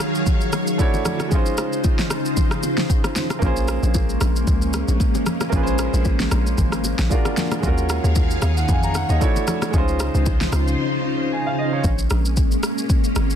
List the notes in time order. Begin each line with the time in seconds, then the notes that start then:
Already playing: D#3 F#3 G#3 C#4 F4 F#4 G#4 A#4 C#5 F5
0.00 cross-stick, low bongo, shaker
0.15 shaker
0.26 kick, low conga, shaker
0.41 shaker
0.52 cross-stick, low bongo, shaker
0.67 shaker
0.78 A3 D4 E4 F#4 C#5, kick, high bongo, shaker
0.94 low bongo, shaker
1.05 cross-stick, low conga, shaker
1.20 cross-stick, high bongo, low bongo, shaker
1.29 C#3 G#3 C#4 D#4 F4 C5, kick, low conga, shaker
1.34 F4 C5
1.46 shaker
1.58 cross-stick, shaker
1.73 shaker
1.84 kick, high bongo, shaker
1.99 snare, shaker
2.10 cross-stick, low bongo, shaker
2.25 shaker
2.37 kick, low conga, shaker
2.51 cross-stick, shaker
2.63 low bongo, shaker
2.77 snare, shaker
2.90 kick, high bongo, shaker
3.04 cross-stick, low bongo, shaker
3.16 snare, low conga, shaker
3.30 cross-stick, high bongo, low bongo, shaker
3.39 A#1 G#3 A#3 C#4 F4, kick, low conga, shaker
3.44 G#4 C5
3.56 shaker
3.68 cross-stick, shaker
3.83 A#1, shaker
3.94 kick, high bongo, shaker
4.09 shaker
4.21 A#1, cross-stick, low bongo, shaker
4.36 shaker
4.47 C#2, kick, low conga, shaker
4.62 shaker
4.73 cross-stick, low bongo, shaker
4.88 A#1, shaker
5.00 kick, high bongo, shaker
5.15 low bongo, shaker
5.26 cross-stick, low conga, shaker
5.41 cross-stick, high bongo, low bongo, shaker
5.49 A#1 A#3 C#4 F4, kick, low conga, shaker
5.55 G#4 B4
5.63 C5, shaker
5.78 cross-stick, shaker
5.93 A#1, shaker
6.05 kick, high bongo, shaker
6.20 snare, shaker
6.31 A#1, cross-stick, low bongo, shaker
6.47 shaker
6.58 G#1, kick, low conga, shaker
6.72 cross-stick, shaker
6.84 low bongo, shaker
6.99 A#1, snare, shaker
7.09 G#3 D4 F4 F#4 A#4, kick, high bongo, shaker
7.25 cross-stick, low bongo, shaker
7.37 snare, low conga, shaker
7.52 cross-stick, high bongo, low bongo, shaker
7.60 D#2 D#3 G#3 C#4 F4 G#4 C#5 F5, kick, low conga, shaker
7.66 F#4 A#4
7.78 shaker
7.89 cross-stick, shaker
8.04 D#2, shaker
8.16 kick, high bongo, shaker
8.31 shaker
8.42 D#2 F5, cross-stick, low bongo, shaker
8.57 F#5, shaker
8.69 F2 G#5, kick, low conga, shaker
8.83 A#5, shaker
8.95 F#5, cross-stick, low bongo, shaker
9.09 D#2 D#5, shaker
9.20 A3 D4 E4 F#4 C#5, kick, high bongo, shaker
9.36 low bongo, shaker
9.47 cross-stick, low conga, shaker
9.62 cross-stick, high bongo, low bongo, shaker
9.70 C#2 C#3 G#3 C#4 D#4 F4 C5, kick, low conga, shaker
9.76 F4 C5
9.88 shaker
10.00 cross-stick, shaker
10.14 C#2, shaker
10.26 kick, high bongo, shaker
10.41 snare, shaker
10.52 C#2, cross-stick, low bongo, shaker
10.68 shaker
11.32 G#5
11.47 F5
11.58 D#5
11.73 C#5
11.84 A#1 G#3 A#3 C#4, kick, shaker
11.99 shaker
12.10 A#1, cross-stick, shaker
12.25 shaker
12.37 kick, shaker
12.52 shaker
12.63 cross-stick, shaker
12.78 shaker
12.90 kick, shaker
13.04 shaker
13.16 G#1, cross-stick, shaker
13.30 shaker